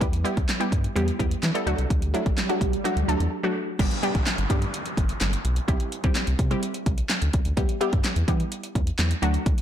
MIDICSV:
0, 0, Header, 1, 6, 480
1, 0, Start_track
1, 0, Key_signature, 1, "major"
1, 0, Tempo, 472441
1, 13, Time_signature, 4, 2, 24, 8
1, 9771, End_track
2, 0, Start_track
2, 0, Title_t, "Synth pluck"
2, 0, Program_c, 0, 84
2, 5, Note_on_c, 0, 55, 84
2, 7, Note_on_c, 0, 59, 77
2, 8, Note_on_c, 0, 64, 74
2, 11, Note_on_c, 0, 67, 90
2, 190, Note_off_c, 0, 55, 0
2, 191, Note_off_c, 0, 59, 0
2, 192, Note_off_c, 0, 64, 0
2, 193, Note_off_c, 0, 67, 0
2, 246, Note_on_c, 0, 55, 89
2, 247, Note_on_c, 0, 59, 80
2, 249, Note_on_c, 0, 64, 79
2, 251, Note_on_c, 0, 67, 95
2, 521, Note_off_c, 0, 55, 0
2, 522, Note_off_c, 0, 59, 0
2, 523, Note_off_c, 0, 64, 0
2, 524, Note_off_c, 0, 67, 0
2, 609, Note_on_c, 0, 55, 86
2, 611, Note_on_c, 0, 59, 78
2, 612, Note_on_c, 0, 64, 80
2, 614, Note_on_c, 0, 67, 99
2, 883, Note_off_c, 0, 55, 0
2, 884, Note_off_c, 0, 59, 0
2, 884, Note_off_c, 0, 64, 0
2, 885, Note_off_c, 0, 67, 0
2, 971, Note_on_c, 0, 55, 87
2, 973, Note_on_c, 0, 59, 76
2, 974, Note_on_c, 0, 64, 78
2, 976, Note_on_c, 0, 67, 93
2, 1153, Note_off_c, 0, 55, 0
2, 1154, Note_off_c, 0, 59, 0
2, 1155, Note_off_c, 0, 64, 0
2, 1156, Note_off_c, 0, 67, 0
2, 1212, Note_on_c, 0, 55, 88
2, 1213, Note_on_c, 0, 59, 82
2, 1214, Note_on_c, 0, 64, 79
2, 1216, Note_on_c, 0, 67, 99
2, 1484, Note_off_c, 0, 55, 0
2, 1485, Note_off_c, 0, 59, 0
2, 1486, Note_off_c, 0, 64, 0
2, 1486, Note_off_c, 0, 67, 0
2, 1569, Note_on_c, 0, 55, 88
2, 1571, Note_on_c, 0, 59, 82
2, 1572, Note_on_c, 0, 64, 79
2, 1574, Note_on_c, 0, 69, 98
2, 1691, Note_off_c, 0, 55, 0
2, 1692, Note_off_c, 0, 59, 0
2, 1692, Note_on_c, 0, 57, 89
2, 1693, Note_off_c, 0, 64, 0
2, 1693, Note_on_c, 0, 54, 93
2, 1694, Note_off_c, 0, 69, 0
2, 1695, Note_on_c, 0, 62, 83
2, 1697, Note_on_c, 0, 66, 104
2, 2077, Note_off_c, 0, 54, 0
2, 2077, Note_off_c, 0, 57, 0
2, 2078, Note_off_c, 0, 62, 0
2, 2079, Note_off_c, 0, 66, 0
2, 2172, Note_on_c, 0, 54, 90
2, 2174, Note_on_c, 0, 57, 79
2, 2175, Note_on_c, 0, 62, 79
2, 2178, Note_on_c, 0, 64, 92
2, 2444, Note_off_c, 0, 54, 0
2, 2445, Note_off_c, 0, 57, 0
2, 2446, Note_off_c, 0, 62, 0
2, 2447, Note_off_c, 0, 64, 0
2, 2531, Note_on_c, 0, 54, 91
2, 2532, Note_on_c, 0, 57, 81
2, 2534, Note_on_c, 0, 62, 83
2, 2536, Note_on_c, 0, 66, 99
2, 2804, Note_off_c, 0, 54, 0
2, 2804, Note_off_c, 0, 57, 0
2, 2805, Note_off_c, 0, 62, 0
2, 2806, Note_off_c, 0, 66, 0
2, 2889, Note_on_c, 0, 54, 86
2, 2890, Note_on_c, 0, 57, 80
2, 2893, Note_on_c, 0, 62, 79
2, 2894, Note_on_c, 0, 66, 97
2, 3072, Note_off_c, 0, 54, 0
2, 3073, Note_off_c, 0, 57, 0
2, 3074, Note_off_c, 0, 62, 0
2, 3075, Note_off_c, 0, 66, 0
2, 3131, Note_on_c, 0, 54, 88
2, 3132, Note_on_c, 0, 57, 79
2, 3135, Note_on_c, 0, 62, 81
2, 3135, Note_on_c, 0, 69, 98
2, 3404, Note_off_c, 0, 54, 0
2, 3405, Note_off_c, 0, 57, 0
2, 3406, Note_off_c, 0, 62, 0
2, 3406, Note_off_c, 0, 69, 0
2, 3489, Note_on_c, 0, 54, 89
2, 3491, Note_on_c, 0, 57, 79
2, 3493, Note_on_c, 0, 62, 81
2, 3494, Note_on_c, 0, 66, 94
2, 3763, Note_off_c, 0, 54, 0
2, 3764, Note_off_c, 0, 57, 0
2, 3765, Note_off_c, 0, 62, 0
2, 3765, Note_off_c, 0, 66, 0
2, 3851, Note_on_c, 0, 55, 86
2, 3852, Note_on_c, 0, 59, 74
2, 3853, Note_on_c, 0, 62, 78
2, 3855, Note_on_c, 0, 67, 99
2, 4033, Note_off_c, 0, 55, 0
2, 4034, Note_off_c, 0, 59, 0
2, 4034, Note_off_c, 0, 62, 0
2, 4036, Note_off_c, 0, 67, 0
2, 4090, Note_on_c, 0, 55, 88
2, 4093, Note_on_c, 0, 59, 83
2, 4095, Note_on_c, 0, 62, 83
2, 4097, Note_on_c, 0, 67, 98
2, 4454, Note_off_c, 0, 55, 0
2, 4455, Note_off_c, 0, 59, 0
2, 4457, Note_off_c, 0, 62, 0
2, 4457, Note_off_c, 0, 67, 0
2, 4570, Note_on_c, 0, 55, 91
2, 4571, Note_on_c, 0, 59, 82
2, 4574, Note_on_c, 0, 62, 81
2, 4575, Note_on_c, 0, 67, 98
2, 5296, Note_off_c, 0, 55, 0
2, 5297, Note_off_c, 0, 59, 0
2, 5298, Note_off_c, 0, 62, 0
2, 5299, Note_off_c, 0, 67, 0
2, 5769, Note_on_c, 0, 55, 84
2, 5770, Note_on_c, 0, 60, 77
2, 5772, Note_on_c, 0, 64, 80
2, 5774, Note_on_c, 0, 67, 98
2, 6043, Note_off_c, 0, 55, 0
2, 6044, Note_off_c, 0, 60, 0
2, 6045, Note_off_c, 0, 64, 0
2, 6045, Note_off_c, 0, 67, 0
2, 6133, Note_on_c, 0, 55, 89
2, 6134, Note_on_c, 0, 60, 83
2, 6135, Note_on_c, 0, 64, 82
2, 6138, Note_on_c, 0, 67, 98
2, 6495, Note_off_c, 0, 55, 0
2, 6496, Note_off_c, 0, 60, 0
2, 6496, Note_off_c, 0, 64, 0
2, 6498, Note_off_c, 0, 67, 0
2, 6609, Note_on_c, 0, 55, 89
2, 6612, Note_on_c, 0, 60, 80
2, 6613, Note_on_c, 0, 64, 79
2, 6615, Note_on_c, 0, 67, 100
2, 7336, Note_off_c, 0, 55, 0
2, 7337, Note_off_c, 0, 60, 0
2, 7338, Note_off_c, 0, 64, 0
2, 7339, Note_off_c, 0, 67, 0
2, 7689, Note_on_c, 0, 55, 85
2, 7690, Note_on_c, 0, 59, 77
2, 7692, Note_on_c, 0, 64, 77
2, 7695, Note_on_c, 0, 67, 95
2, 7872, Note_off_c, 0, 55, 0
2, 7873, Note_off_c, 0, 59, 0
2, 7874, Note_off_c, 0, 64, 0
2, 7875, Note_off_c, 0, 67, 0
2, 7930, Note_on_c, 0, 55, 85
2, 7931, Note_on_c, 0, 59, 84
2, 7933, Note_on_c, 0, 64, 80
2, 7934, Note_on_c, 0, 67, 97
2, 8294, Note_off_c, 0, 55, 0
2, 8295, Note_off_c, 0, 59, 0
2, 8295, Note_off_c, 0, 64, 0
2, 8296, Note_off_c, 0, 67, 0
2, 8411, Note_on_c, 0, 55, 90
2, 8412, Note_on_c, 0, 59, 83
2, 8415, Note_on_c, 0, 64, 82
2, 8417, Note_on_c, 0, 67, 101
2, 9137, Note_off_c, 0, 55, 0
2, 9137, Note_off_c, 0, 59, 0
2, 9139, Note_off_c, 0, 64, 0
2, 9140, Note_off_c, 0, 67, 0
2, 9368, Note_on_c, 0, 54, 93
2, 9370, Note_on_c, 0, 57, 89
2, 9371, Note_on_c, 0, 62, 85
2, 9374, Note_on_c, 0, 66, 101
2, 9771, Note_off_c, 0, 54, 0
2, 9771, Note_off_c, 0, 57, 0
2, 9771, Note_off_c, 0, 62, 0
2, 9771, Note_off_c, 0, 66, 0
2, 9771, End_track
3, 0, Start_track
3, 0, Title_t, "Analog synth bass"
3, 0, Program_c, 1, 38
3, 15, Note_on_c, 1, 40, 115
3, 243, Note_off_c, 1, 40, 0
3, 377, Note_on_c, 1, 40, 97
3, 452, Note_off_c, 1, 40, 0
3, 733, Note_on_c, 1, 43, 87
3, 886, Note_off_c, 1, 43, 0
3, 975, Note_on_c, 1, 40, 109
3, 1127, Note_off_c, 1, 40, 0
3, 1214, Note_on_c, 1, 40, 90
3, 1367, Note_off_c, 1, 40, 0
3, 1453, Note_on_c, 1, 52, 92
3, 1529, Note_off_c, 1, 52, 0
3, 1691, Note_on_c, 1, 38, 115
3, 1768, Note_off_c, 1, 38, 0
3, 1812, Note_on_c, 1, 36, 93
3, 1889, Note_off_c, 1, 36, 0
3, 1934, Note_on_c, 1, 38, 120
3, 2163, Note_off_c, 1, 38, 0
3, 2296, Note_on_c, 1, 33, 91
3, 2371, Note_off_c, 1, 33, 0
3, 2652, Note_on_c, 1, 35, 89
3, 2805, Note_off_c, 1, 35, 0
3, 3011, Note_on_c, 1, 38, 90
3, 3088, Note_off_c, 1, 38, 0
3, 3131, Note_on_c, 1, 38, 85
3, 3208, Note_off_c, 1, 38, 0
3, 3251, Note_on_c, 1, 40, 93
3, 3328, Note_off_c, 1, 40, 0
3, 3853, Note_on_c, 1, 31, 110
3, 3930, Note_off_c, 1, 31, 0
3, 4216, Note_on_c, 1, 33, 97
3, 4291, Note_off_c, 1, 33, 0
3, 4452, Note_on_c, 1, 31, 101
3, 4529, Note_off_c, 1, 31, 0
3, 4572, Note_on_c, 1, 43, 99
3, 4725, Note_off_c, 1, 43, 0
3, 5053, Note_on_c, 1, 31, 85
3, 5206, Note_off_c, 1, 31, 0
3, 5292, Note_on_c, 1, 31, 96
3, 5445, Note_off_c, 1, 31, 0
3, 5534, Note_on_c, 1, 35, 90
3, 5687, Note_off_c, 1, 35, 0
3, 5775, Note_on_c, 1, 36, 117
3, 5851, Note_off_c, 1, 36, 0
3, 6136, Note_on_c, 1, 38, 89
3, 6212, Note_off_c, 1, 38, 0
3, 6374, Note_on_c, 1, 36, 96
3, 6450, Note_off_c, 1, 36, 0
3, 6491, Note_on_c, 1, 48, 96
3, 6645, Note_off_c, 1, 48, 0
3, 6973, Note_on_c, 1, 36, 94
3, 7126, Note_off_c, 1, 36, 0
3, 7335, Note_on_c, 1, 38, 99
3, 7411, Note_off_c, 1, 38, 0
3, 7454, Note_on_c, 1, 36, 94
3, 7530, Note_off_c, 1, 36, 0
3, 7574, Note_on_c, 1, 38, 88
3, 7650, Note_off_c, 1, 38, 0
3, 7693, Note_on_c, 1, 40, 117
3, 7769, Note_off_c, 1, 40, 0
3, 8056, Note_on_c, 1, 43, 97
3, 8132, Note_off_c, 1, 43, 0
3, 8292, Note_on_c, 1, 40, 97
3, 8369, Note_off_c, 1, 40, 0
3, 8412, Note_on_c, 1, 52, 94
3, 8565, Note_off_c, 1, 52, 0
3, 8893, Note_on_c, 1, 40, 89
3, 9046, Note_off_c, 1, 40, 0
3, 9130, Note_on_c, 1, 40, 97
3, 9284, Note_off_c, 1, 40, 0
3, 9371, Note_on_c, 1, 38, 99
3, 9525, Note_off_c, 1, 38, 0
3, 9612, Note_on_c, 1, 38, 112
3, 9689, Note_off_c, 1, 38, 0
3, 9771, End_track
4, 0, Start_track
4, 0, Title_t, "Downlifter"
4, 0, Program_c, 2, 103
4, 3851, Note_on_c, 2, 60, 87
4, 7692, Note_off_c, 2, 60, 0
4, 9771, End_track
5, 0, Start_track
5, 0, Title_t, "Swell"
5, 0, Program_c, 3, 103
5, 12, Note_on_c, 3, 60, 84
5, 3373, Note_off_c, 3, 60, 0
5, 9771, End_track
6, 0, Start_track
6, 0, Title_t, "Drums"
6, 14, Note_on_c, 9, 36, 119
6, 15, Note_on_c, 9, 42, 86
6, 116, Note_off_c, 9, 36, 0
6, 117, Note_off_c, 9, 42, 0
6, 134, Note_on_c, 9, 42, 59
6, 235, Note_off_c, 9, 42, 0
6, 258, Note_on_c, 9, 42, 66
6, 360, Note_off_c, 9, 42, 0
6, 377, Note_on_c, 9, 36, 105
6, 377, Note_on_c, 9, 42, 47
6, 478, Note_off_c, 9, 42, 0
6, 479, Note_off_c, 9, 36, 0
6, 497, Note_on_c, 9, 39, 119
6, 497, Note_on_c, 9, 42, 108
6, 498, Note_on_c, 9, 38, 93
6, 598, Note_off_c, 9, 39, 0
6, 599, Note_off_c, 9, 38, 0
6, 599, Note_off_c, 9, 42, 0
6, 616, Note_on_c, 9, 42, 52
6, 717, Note_off_c, 9, 42, 0
6, 733, Note_on_c, 9, 36, 92
6, 737, Note_on_c, 9, 42, 87
6, 834, Note_off_c, 9, 36, 0
6, 838, Note_off_c, 9, 42, 0
6, 856, Note_on_c, 9, 42, 48
6, 958, Note_off_c, 9, 42, 0
6, 979, Note_on_c, 9, 42, 93
6, 1081, Note_off_c, 9, 42, 0
6, 1095, Note_on_c, 9, 42, 52
6, 1197, Note_off_c, 9, 42, 0
6, 1215, Note_on_c, 9, 36, 87
6, 1219, Note_on_c, 9, 42, 71
6, 1316, Note_off_c, 9, 36, 0
6, 1321, Note_off_c, 9, 42, 0
6, 1335, Note_on_c, 9, 42, 56
6, 1436, Note_off_c, 9, 42, 0
6, 1453, Note_on_c, 9, 39, 117
6, 1454, Note_on_c, 9, 38, 95
6, 1455, Note_on_c, 9, 42, 104
6, 1555, Note_off_c, 9, 39, 0
6, 1556, Note_off_c, 9, 38, 0
6, 1557, Note_off_c, 9, 42, 0
6, 1577, Note_on_c, 9, 42, 63
6, 1679, Note_off_c, 9, 42, 0
6, 1696, Note_on_c, 9, 42, 76
6, 1798, Note_off_c, 9, 42, 0
6, 1813, Note_on_c, 9, 42, 48
6, 1914, Note_off_c, 9, 42, 0
6, 1934, Note_on_c, 9, 36, 121
6, 1936, Note_on_c, 9, 42, 91
6, 2036, Note_off_c, 9, 36, 0
6, 2038, Note_off_c, 9, 42, 0
6, 2054, Note_on_c, 9, 42, 58
6, 2156, Note_off_c, 9, 42, 0
6, 2179, Note_on_c, 9, 42, 67
6, 2281, Note_off_c, 9, 42, 0
6, 2296, Note_on_c, 9, 36, 104
6, 2296, Note_on_c, 9, 42, 47
6, 2398, Note_off_c, 9, 36, 0
6, 2398, Note_off_c, 9, 42, 0
6, 2416, Note_on_c, 9, 39, 118
6, 2416, Note_on_c, 9, 42, 101
6, 2417, Note_on_c, 9, 38, 98
6, 2517, Note_off_c, 9, 39, 0
6, 2518, Note_off_c, 9, 38, 0
6, 2518, Note_off_c, 9, 42, 0
6, 2536, Note_on_c, 9, 42, 50
6, 2637, Note_off_c, 9, 42, 0
6, 2652, Note_on_c, 9, 36, 94
6, 2657, Note_on_c, 9, 42, 83
6, 2754, Note_off_c, 9, 36, 0
6, 2758, Note_off_c, 9, 42, 0
6, 2777, Note_on_c, 9, 42, 48
6, 2878, Note_off_c, 9, 42, 0
6, 2897, Note_on_c, 9, 42, 94
6, 2999, Note_off_c, 9, 42, 0
6, 3016, Note_on_c, 9, 42, 52
6, 3117, Note_off_c, 9, 42, 0
6, 3139, Note_on_c, 9, 42, 72
6, 3241, Note_off_c, 9, 42, 0
6, 3255, Note_on_c, 9, 42, 55
6, 3356, Note_off_c, 9, 42, 0
6, 3853, Note_on_c, 9, 36, 122
6, 3855, Note_on_c, 9, 42, 92
6, 3855, Note_on_c, 9, 49, 102
6, 3955, Note_off_c, 9, 36, 0
6, 3957, Note_off_c, 9, 42, 0
6, 3957, Note_off_c, 9, 49, 0
6, 3974, Note_on_c, 9, 42, 60
6, 4076, Note_off_c, 9, 42, 0
6, 4096, Note_on_c, 9, 42, 69
6, 4198, Note_off_c, 9, 42, 0
6, 4215, Note_on_c, 9, 42, 50
6, 4216, Note_on_c, 9, 36, 98
6, 4316, Note_off_c, 9, 42, 0
6, 4317, Note_off_c, 9, 36, 0
6, 4334, Note_on_c, 9, 38, 94
6, 4334, Note_on_c, 9, 39, 88
6, 4334, Note_on_c, 9, 42, 107
6, 4435, Note_off_c, 9, 39, 0
6, 4436, Note_off_c, 9, 38, 0
6, 4436, Note_off_c, 9, 42, 0
6, 4453, Note_on_c, 9, 42, 52
6, 4554, Note_off_c, 9, 42, 0
6, 4571, Note_on_c, 9, 36, 93
6, 4572, Note_on_c, 9, 42, 89
6, 4673, Note_off_c, 9, 36, 0
6, 4674, Note_off_c, 9, 42, 0
6, 4693, Note_on_c, 9, 42, 47
6, 4794, Note_off_c, 9, 42, 0
6, 4815, Note_on_c, 9, 42, 94
6, 4916, Note_off_c, 9, 42, 0
6, 4933, Note_on_c, 9, 42, 54
6, 5035, Note_off_c, 9, 42, 0
6, 5053, Note_on_c, 9, 36, 91
6, 5057, Note_on_c, 9, 42, 75
6, 5155, Note_off_c, 9, 36, 0
6, 5159, Note_off_c, 9, 42, 0
6, 5172, Note_on_c, 9, 42, 54
6, 5274, Note_off_c, 9, 42, 0
6, 5293, Note_on_c, 9, 38, 94
6, 5293, Note_on_c, 9, 39, 118
6, 5294, Note_on_c, 9, 42, 103
6, 5295, Note_off_c, 9, 39, 0
6, 5295, Note_on_c, 9, 39, 97
6, 5395, Note_off_c, 9, 38, 0
6, 5396, Note_off_c, 9, 39, 0
6, 5396, Note_off_c, 9, 42, 0
6, 5416, Note_on_c, 9, 42, 67
6, 5518, Note_off_c, 9, 42, 0
6, 5534, Note_on_c, 9, 42, 75
6, 5636, Note_off_c, 9, 42, 0
6, 5651, Note_on_c, 9, 42, 50
6, 5753, Note_off_c, 9, 42, 0
6, 5774, Note_on_c, 9, 36, 123
6, 5775, Note_on_c, 9, 42, 89
6, 5875, Note_off_c, 9, 36, 0
6, 5877, Note_off_c, 9, 42, 0
6, 5892, Note_on_c, 9, 42, 59
6, 5994, Note_off_c, 9, 42, 0
6, 6016, Note_on_c, 9, 42, 70
6, 6118, Note_off_c, 9, 42, 0
6, 6134, Note_on_c, 9, 42, 50
6, 6136, Note_on_c, 9, 36, 99
6, 6235, Note_off_c, 9, 42, 0
6, 6237, Note_off_c, 9, 36, 0
6, 6252, Note_on_c, 9, 39, 121
6, 6253, Note_on_c, 9, 38, 92
6, 6253, Note_on_c, 9, 42, 111
6, 6255, Note_off_c, 9, 39, 0
6, 6255, Note_on_c, 9, 39, 94
6, 6354, Note_off_c, 9, 38, 0
6, 6354, Note_off_c, 9, 42, 0
6, 6357, Note_off_c, 9, 39, 0
6, 6372, Note_on_c, 9, 42, 53
6, 6473, Note_off_c, 9, 42, 0
6, 6492, Note_on_c, 9, 36, 95
6, 6492, Note_on_c, 9, 42, 86
6, 6593, Note_off_c, 9, 36, 0
6, 6593, Note_off_c, 9, 42, 0
6, 6614, Note_on_c, 9, 42, 47
6, 6715, Note_off_c, 9, 42, 0
6, 6733, Note_on_c, 9, 42, 97
6, 6835, Note_off_c, 9, 42, 0
6, 6851, Note_on_c, 9, 42, 55
6, 6952, Note_off_c, 9, 42, 0
6, 6972, Note_on_c, 9, 36, 97
6, 6972, Note_on_c, 9, 42, 75
6, 7074, Note_off_c, 9, 36, 0
6, 7074, Note_off_c, 9, 42, 0
6, 7089, Note_on_c, 9, 42, 55
6, 7190, Note_off_c, 9, 42, 0
6, 7209, Note_on_c, 9, 39, 114
6, 7210, Note_on_c, 9, 38, 94
6, 7211, Note_on_c, 9, 42, 101
6, 7214, Note_off_c, 9, 39, 0
6, 7214, Note_on_c, 9, 39, 92
6, 7311, Note_off_c, 9, 38, 0
6, 7312, Note_off_c, 9, 42, 0
6, 7316, Note_off_c, 9, 39, 0
6, 7332, Note_on_c, 9, 42, 65
6, 7434, Note_off_c, 9, 42, 0
6, 7451, Note_on_c, 9, 42, 78
6, 7455, Note_on_c, 9, 36, 98
6, 7553, Note_off_c, 9, 42, 0
6, 7556, Note_off_c, 9, 36, 0
6, 7570, Note_on_c, 9, 42, 50
6, 7671, Note_off_c, 9, 42, 0
6, 7692, Note_on_c, 9, 42, 93
6, 7693, Note_on_c, 9, 36, 119
6, 7794, Note_off_c, 9, 42, 0
6, 7795, Note_off_c, 9, 36, 0
6, 7812, Note_on_c, 9, 42, 61
6, 7914, Note_off_c, 9, 42, 0
6, 7935, Note_on_c, 9, 42, 69
6, 8037, Note_off_c, 9, 42, 0
6, 8054, Note_on_c, 9, 42, 50
6, 8056, Note_on_c, 9, 36, 104
6, 8156, Note_off_c, 9, 42, 0
6, 8157, Note_off_c, 9, 36, 0
6, 8173, Note_on_c, 9, 39, 120
6, 8173, Note_on_c, 9, 42, 108
6, 8174, Note_on_c, 9, 38, 95
6, 8176, Note_off_c, 9, 39, 0
6, 8176, Note_on_c, 9, 39, 90
6, 8275, Note_off_c, 9, 38, 0
6, 8275, Note_off_c, 9, 42, 0
6, 8278, Note_off_c, 9, 39, 0
6, 8292, Note_on_c, 9, 42, 55
6, 8394, Note_off_c, 9, 42, 0
6, 8412, Note_on_c, 9, 36, 98
6, 8413, Note_on_c, 9, 42, 85
6, 8513, Note_off_c, 9, 36, 0
6, 8514, Note_off_c, 9, 42, 0
6, 8534, Note_on_c, 9, 42, 49
6, 8635, Note_off_c, 9, 42, 0
6, 8654, Note_on_c, 9, 42, 99
6, 8755, Note_off_c, 9, 42, 0
6, 8773, Note_on_c, 9, 42, 52
6, 8874, Note_off_c, 9, 42, 0
6, 8893, Note_on_c, 9, 36, 93
6, 8896, Note_on_c, 9, 42, 72
6, 8995, Note_off_c, 9, 36, 0
6, 8998, Note_off_c, 9, 42, 0
6, 9012, Note_on_c, 9, 42, 54
6, 9114, Note_off_c, 9, 42, 0
6, 9132, Note_on_c, 9, 38, 97
6, 9132, Note_on_c, 9, 39, 120
6, 9133, Note_off_c, 9, 39, 0
6, 9133, Note_on_c, 9, 39, 94
6, 9134, Note_on_c, 9, 42, 103
6, 9234, Note_off_c, 9, 38, 0
6, 9235, Note_off_c, 9, 39, 0
6, 9235, Note_off_c, 9, 42, 0
6, 9253, Note_on_c, 9, 42, 65
6, 9355, Note_off_c, 9, 42, 0
6, 9374, Note_on_c, 9, 42, 77
6, 9475, Note_off_c, 9, 42, 0
6, 9489, Note_on_c, 9, 42, 50
6, 9591, Note_off_c, 9, 42, 0
6, 9613, Note_on_c, 9, 36, 126
6, 9613, Note_on_c, 9, 42, 94
6, 9714, Note_off_c, 9, 36, 0
6, 9715, Note_off_c, 9, 42, 0
6, 9732, Note_on_c, 9, 42, 60
6, 9771, Note_off_c, 9, 42, 0
6, 9771, End_track
0, 0, End_of_file